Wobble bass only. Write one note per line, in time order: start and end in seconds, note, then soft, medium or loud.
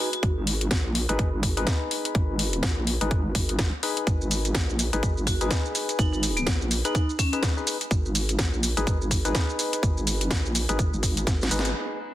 0.23 0.69 G#1 medium
0.71 1.07 A#1 medium
1.09 1.17 G#1 loud
1.19 1.65 G#1 loud
2.15 2.61 G#1 medium
2.63 2.99 A#1 medium
3.01 3.33 G#1 loud
3.35 3.57 G#1 medium
3.59 3.71 G#1 loud
4.07 4.53 G#1 loud
4.55 4.91 A#1 medium
4.93 5.01 G#1 medium
5.03 5.49 G#1 loud
5.99 6.45 G#1 medium
6.47 6.83 A#1 medium
7.91 8.37 G#1 loud
8.39 8.75 A#1 medium
8.77 8.85 G#1 medium
8.87 9.33 G#1 loud
9.83 10.29 G#1 medium
10.31 10.67 A#1 medium
10.69 10.91 G#1 loud
10.93 11.25 G#1 loud
11.27 11.49 G#1 loud
11.51 11.73 G#1 loud